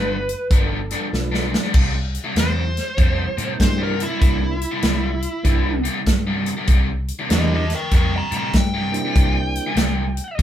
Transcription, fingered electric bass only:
Already playing: G1
0.50 G1
1.13 B1
1.74 C2
2.36 E2
2.98 F2
3.37 A2
3.60 G2
4.22 C2
4.83 C2
5.45 C2
6.06 G2
6.67 C2
7.30 E2
7.92 F2
8.31 A2
8.53 G2
9.16 C2
9.76 C2
10.39 C2

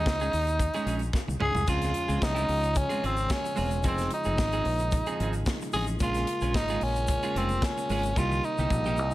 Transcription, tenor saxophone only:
Already playing: D#4
1.41 G#4
1.69 F4
2.23 D#4
2.77 C#4
3.05 C4
3.31 C#4
3.87 C4
4.14 D#4
5.73 G#4
6.02 F4
6.55 D#4
6.84 C#4
7.37 C4
7.64 C#4
8.18 F4
8.45 D#4

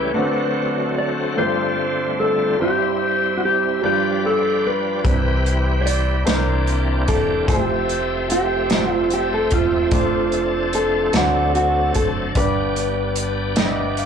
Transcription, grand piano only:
Already playing: G3 C#4 E4 B4
0.14 D3 A3 C4 D4 F#4
1.36 G2 A3 F4 G4 B4
1.45 C5
2.59 G2 G3 C4 E4 B4
2.68 C5
3.82 G2 G3 D4 F4 B4
5.04 C3 G3 C4 D4 B4
5.12 E4
6.26 C3 D4 E4 A4
6.34 A#4
7.48 G3 E4 F4 C5
7.54 A3
8.70 G3 E4 F4 C5
8.76 A3
9.92 A3 D4 F4 C5
11.13 D3 A3 D4 F#4 C5
12.35 G2 B3 D4 G4 D5
13.56 B3 D4 G4 D#5
13.65 E5
13.99 F5

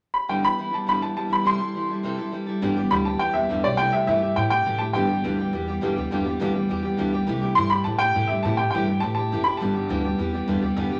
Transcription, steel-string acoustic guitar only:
0.29 G2 D3 E3 G3 B3 E4
0.43 E3 G3 B3 E4
0.57 E3 G3 B3 E4
0.71 E3 G3 B3 E4
0.86 G2 D3 E3 G3 B3 E4
1.01 E3 G3 B3 E4
1.16 E3 G3 B3 E4
1.30 E3 G3 B3 E4
1.44 C3 E3 G3 E4 A4
1.58 G3 E4 A4
1.74 E3 G3 E4 A4
1.89 G3 E4 A4
2.03 C3 E3 G3 E4 A4
2.17 G3 E4 A4
2.31 E3 G3 E4 A4
2.47 G3 E4 A4
2.61 G2 D3 E3 G3 B3 G4
2.76 E3 G3 B3 G4
2.90 G2 D3 E3 G3 B3 G4
3.05 E3 G3 B3 G4
3.19 E3 G3 B3 G4
3.34 E3 G3 B3 G4
3.49 G2 D3 E3 G3 B3 G4
3.64 E3 G3 B3 G4
3.78 C3 E3 A3 E4 G4
3.92 A3 E4 G4
4.07 C3 E3 A3 E4 G4
4.21 A3 E4 G4
4.36 E3 A3 E4 G4
4.51 A3 E4 G4
4.65 C3 E3 A3 E4 G4
4.79 A3 E4 G4
4.94 G2 D3 E3 G3 B3 G4
5.09 E3 G3 B3 G4
5.24 G2 D3 E3 G3 B3 G4
5.39 E3 G3 B3 G4
5.53 E3 G3 B3 G4
5.67 E3 G3 B3 G4
5.81 G2 D3 E3 G3 B3 G4
5.96 E3 G3 B3 G4
6.11 G2 D3 E3 G3 B3 G4
6.24 E3 G3 B3 G4
6.40 G2 D3 E3 G3 B3 G4
6.53 E3 G3 B3 G4
6.68 E3 G3 B3 G4
6.83 E3 G3 B3 G4
6.97 G2 D3 E3 G3 B3 G4
7.12 E3 G3 B3 G4
7.27 C3 E3 A3 E4 G4
7.41 A3 E4 G4
7.56 C3 E3 A3 E4 G4
7.71 A3 E4 G4
7.86 E3 A3 E4 G4
8.01 A3 E4 G4
8.15 C3 E3 A3 E4 G4
8.30 A3 E4 G4
8.44 C3 E3 A3 E4 G4
8.58 A3 E4 G4
8.73 C3 E3 A3 E4 G4
8.88 A3 E4 G4
9.02 E3 A3 E4 G4
9.17 A3 E4 G4
9.31 C3 E3 A3 E4 G4
9.46 A3 E4 G4
9.60 G2 D3 E3 G3 B3 G4
9.75 E3 G3 B3 G4
9.88 G2 D3 E3 G3 B3 G4
10.04 E3 G3 B3 G4
10.18 E3 G3 B3 G4
10.33 E3 G3 B3 G4
10.47 G2 D3 E3 G3 B3 G4
10.61 E3 G3 B3 G4
10.76 G2 D3 E3 G3 B3 G4
10.91 E3 G3 B3 G4

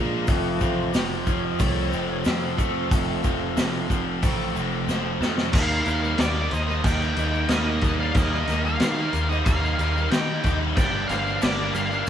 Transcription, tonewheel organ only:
Already playing: G#3 F4
0.27 F3 A3 C4 F4
0.62 A3 F4
1.23 C5
1.29 C#5
1.44 D#5
1.60 C#5
1.72 C5
1.77 C#5
1.94 D#5
2.11 C#5
2.26 A4 F5
2.93 F3 A3 C4

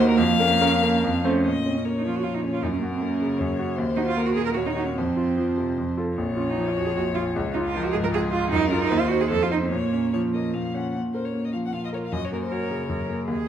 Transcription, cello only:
Already playing: A#3
0.60 C#4
0.82 A#3
1.03 C4
1.25 C#4
1.65 C4
1.77 C#4
1.98 D#4
2.06 F4
2.16 F#4
2.23 F4
2.34 D#4
2.44 C#4
2.54 F4
2.63 D#4
2.71 C#4
2.80 A#3
2.91 C4
3.00 C#4
3.96 D#4
4.07 F4
4.26 F#4
4.35 G#4
4.45 A#4
4.54 F#4
4.66 D#4
4.75 D#4
4.87 C#4
4.97 C4
6.37 C#4
6.50 D#4
6.68 F4
6.75 F#4
6.85 G#4
6.95 F#4
7.14 F4
7.54 D#4
7.65 F4
7.83 F#4
7.92 G#4
8.04 A#4
8.14 G#4
8.32 F4
8.51 D#4
8.69 C#4
8.79 D#4
9.00 F4
9.08 F#4
9.21 G#4
9.30 A4
9.43 F4
9.51 D#4
9.62 C4
9.72 A#3
10.97 C#4
11.74 F4
12.13 F#4
12.50 A#4
12.90 A#4
13.28 G#4

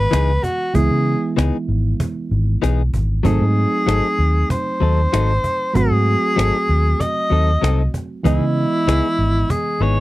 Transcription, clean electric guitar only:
0.11 E3 B3 D#4 G#4
1.37 E3 B3 D#4 G#4
2.62 E3 B3 D#4 G#4
3.23 F#3 C4 D#4 A4
3.86 F#3 C4 D#4 A4
4.80 F#3 C4 D#4 A4
5.13 F#3 C4 D#4 A4
6.36 F#3 C4 D#4 A4
7.30 F#3 C4 D#4 A4
7.61 F#3 C4 D#4 A4
8.24 E3 B3 D#4 G#4
8.87 E3 B3 D#4 G#4
9.81 E3 B3 D#4 G#4

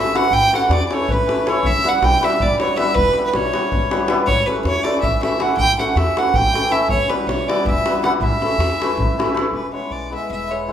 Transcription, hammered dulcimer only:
Already playing: E3
0.13 E3 A3 C#4 E4
0.52 E3 A3 C#4 E4
0.91 E3 A3 C#4 E4
1.27 E3 A3 C#4 E4
1.46 E3 A3 C#4 E4
1.84 E3 G3 B3 E4
2.20 E3 G3 B3 E4
2.61 E3 G3 B3 E4
2.78 E3 G3 B3 E4
3.16 E3 G3 B3 E4
3.52 E3 G3 B3 E4
3.90 E3 G3 B3 E4
4.08 E3 G3 B3 E4
4.46 E3 A3 C#4 E4
4.83 E3 A3 C#4 E4
5.21 E3 A3 C#4 E4
5.39 E3 A3 C#4 E4
5.78 E3 A3 C#4 E4
6.16 E3 A3 C#4 E4
6.53 E3 A3 C#4 E4
6.70 E3 A3 C#4 E4
7.08 E3 G3 B3 E4
7.48 E3 G3 B3 E4
7.86 E3 G3 B3 E4
8.03 E3 G3 B3 E4
8.41 E3 A3 C#4 E4
8.80 E3 A3 C#4 E4
9.17 E3 A3 C#4 E4
9.34 E3 A3 C#4 E4
9.72 E3 G#3 B3 E4
10.10 E3 G#3 B3 E4
10.49 E3 G#3 B3 E4
10.67 E3 G#3 B3 E4

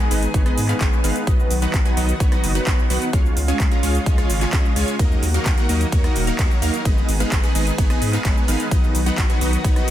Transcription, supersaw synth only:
0.11 G#3 B3 D#4 B4 D#5
0.34 G#3 B3 D#4 B4 C#5
0.46 G#3 B3 D#4 B4 D#5
0.69 G#3 B3 D#4 B4 F5
0.81 C#5
1.04 G#3 B3 D#4 B4 F5
1.27 F#3 B3 D#4 B4 D#5
1.62 F#3 B3 D#4 B4 F#5
1.85 F#3 B3 D#4 B4 G#5
1.97 F#3 B3 D#4 B4 D#5
2.20 F#3 B3 D#4 B4 C#5
2.32 F#3 B3 D#4 B4 D#5
2.55 F#3 B3 D#4 B4 F#5
2.67 B3 D#4 B4 C#5
2.90 F#3 B3 D#4 B4 F#5
3.13 G#3 C#4 F4 C#5 F5
3.48 G#3 C#4 F4 C#5 G#5
3.71 G#3 C#4 F4 C#5 A#5
3.83 G#3 C#4 F4 C#5 F5
4.06 G#3 C#4 F4 C#5 D#5
4.18 G#3 C#4 F4 C#5 F5
4.41 G#3 C#4 F4 C#5 G#5
4.53 G#3 C#4 F4 D#5
4.76 G#3 C#4 F4 C#5 G#5
4.99 F#3 A#3 D#4 A#4 D#5
5.34 F#3 A#3 D#4 A#4 F5
5.58 F#3 A#3 D#4 A#4 F#5
5.69 F#3 A#3 D#4 A#4 D#5
5.92 F#3 A#3 D#4 A#4 C#5
6.04 F#3 A#3 D#4 A#4 D#5
6.27 F#3 A#3 D#4 A#4 F5
6.39 F#3 A#3 D#4 A#4 C#5
6.62 F#3 A#3 D#4 A#4 F5
6.85 G#3 B3 D#4 B4 D#5
7.20 G#3 B3 D#4 B4 F5
7.43 G#3 B3 D#4 B4 F#5
7.55 G#3 B3 D#4 B4 D#5
7.78 G#3 B3 D#4 B4 C#5
7.90 G#3 B3 D#4 B4 D#5
8.13 G#3 B3 D#4 B4 F5
8.25 G#3 B3 D#4 C#5
8.48 G#3 B3 D#4 B4 F5
8.71 F#3 B3 D#4 B4 D#5
9.06 F#3 B3 D#4 B4 F#5
9.30 F#3 B3 D#4 B4 G#5
9.41 F#3 B3 D#4 B4 D#5
9.65 F#3 B3 D#4 B4 C#5
9.76 F#3 B3 D#4 B4 D#5

